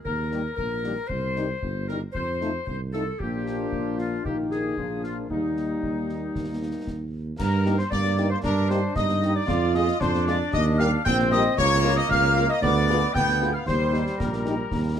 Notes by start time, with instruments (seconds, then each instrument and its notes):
0.04 tuba D#2, woodwind section A#4, concert bass drum
0.31 french horn section D#3 G3 A#3, trumpet section G4, snare
0.56 tuba A#1, woodwind section A#4, concert bass drum
0.83 french horn section D#3 G3 A#3, trumpet section G4, snare
1.07 tuba C2, woodwind section C5, concert bass drum
1.36 french horn section D#3 G3 D#4, trumpet section G4, snare
1.62 tuba G1, concert bass drum
1.88 french horn section D#3 G3 D#4, trumpet section G4, woodwind section A#4, snare
2.13 tuba F2, woodwind section C5, concert bass drum
2.41 french horn section F3 A3 D#4, trumpet section F4, snare
2.66 tuba C2, woodwind section C5, concert bass drum
2.93 french horn section F3 A3 D#4, trumpet section F4, woodwind section A4, snare
3.19 tuba A#1, french horn section F3 A#3 D4, trumpet section F4, woodwind section G4, concert bass drum
3.47 snare
3.72 tuba A#1, concert bass drum
3.98 woodwind section F4, snare
4.25 tuba A#1, french horn section D#3 A#3 D#4, woodwind section G4, trumpet section G4, concert bass drum
4.51 woodwind section G#4, snare
4.77 tuba A#1, french horn section F3 A#3 D4, trumpet section F4, concert bass drum
5.03 woodwind section F4, snare
5.29 tuba D#2, french horn section G3 A#3 D#4, trumpet section D#4, woodwind section D#4, concert bass drum
5.57 snare
5.82 tuba D#2, concert bass drum
6.09 snare
6.35 tuba D#2, concert bass drum, snare
6.87 tuba D#2, concert bass drum, snare
7.38 tuba G2, woodwind section A#4, trumpet section A#4, piccolo A#5, concert bass drum, snare, crash
7.66 french horn section A#3 D#4 G4, snare
7.78 woodwind section C5, trumpet section C5, piccolo C6, snare
7.91 tuba G2, trombone section A#3, woodwind section D5, trumpet section D5, piccolo D6, concert bass drum, snare
8.04 snare
8.17 french horn section A#3 D#4 G4, snare
8.30 woodwind section C5, trumpet section C5, piccolo C6
8.43 tuba G2, trombone section D4, woodwind section A#4, trumpet section A#4, piccolo A#5, concert bass drum, snare
8.69 french horn section A#3 D#4 G4, woodwind section C5, trumpet section C5, piccolo C6, snare
8.96 tuba G2, trombone section D#4, woodwind section D#5, trumpet section D#5, piccolo D#6, concert bass drum, snare
9.09 snare
9.22 french horn section A#3 D#4 G4, snare
9.35 trumpet section D5, woodwind section D5, piccolo D6
9.47 tuba F2, trombone section F4, concert bass drum, snare
9.74 french horn section G#3 F4 G#4, trumpet section D#5, woodwind section D#5, piccolo D#6, snare
9.88 snare
10.00 tuba F2, trombone section D4, trumpet section C5, woodwind section C5, piccolo C6, concert bass drum, snare
10.14 snare
10.26 french horn section G#3 F4 G#4, trumpet section D5, woodwind section D5, piccolo D6, snare
10.52 tuba D#2, trumpet section D#5, woodwind section D#5, piccolo D#6, concert bass drum, snare
10.78 french horn section G3 G4 A#4, trumpet section F5, woodwind section F5, piccolo F6, snare
11.04 tuba A#1, trombone section C4, trumpet section G5, woodwind section G5, piccolo G6, concert bass drum, snare
11.19 snare
11.31 french horn section G3 G4 A#4, trumpet section D#5, woodwind section D#5, piccolo D#6, snare
11.57 tuba C#2, trombone section A#3, trumpet section C#5, woodwind section C#5, piccolo C#6, concert bass drum, snare, crash
11.84 french horn section A#3 F4 A#4, snare
11.96 trumpet section D#5, woodwind section D#5, piccolo D#6, snare
12.09 tuba C#2, trumpet section F5, woodwind section F5, piccolo F6, concert bass drum, snare
12.24 snare
12.36 french horn section A#3 F4 A#4, snare
12.49 woodwind section D#5, trumpet section D#5, piccolo D#6
12.62 tuba D2, trombone section B3, trumpet section D5, woodwind section D5, piccolo D6, concert bass drum, snare
12.89 french horn section B3 F4 G#4, snare
13.13 tuba D2, trombone section B3, trumpet section G5, woodwind section G5, piccolo G6, concert bass drum, snare
13.29 snare
13.41 french horn section B3 F4 G#4, snare
13.53 trumpet section F5, woodwind section F5, piccolo F6
13.66 tuba D#2, trombone section G3, trumpet section C5, woodwind section C5, piccolo C6, concert bass drum, snare
13.92 french horn section A#3 D#4 G4, snare
14.07 snare
14.17 tuba A#1, woodwind section A#4, trumpet section A#4, piccolo A#5, concert bass drum, snare
14.33 snare
14.45 french horn section A#3 D#4 G4, snare
14.71 tuba D#2, concert bass drum, snare
14.96 french horn section A#3 D#4 G4